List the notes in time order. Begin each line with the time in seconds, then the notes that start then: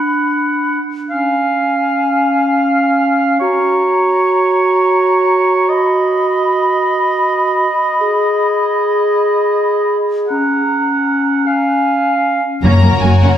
Already playing: D4 F#5 B5
1.11 C#4 F5 G#5
3.40 F#4 C#5 A#5
5.69 D#5 B5
8.01 G#4
10.28 C#4 F#5 A#5
11.46 F5 G#5
12.62 F#1 F#2 A#3 C#4 F#4 A#4 A#5
12.82 F#1 F#2 A#3 C#4
13.02 F#1 F#2 F#3 A#3 F#4 G#5
13.21 F#1 F#2 A#3 C#4 C#5 F#5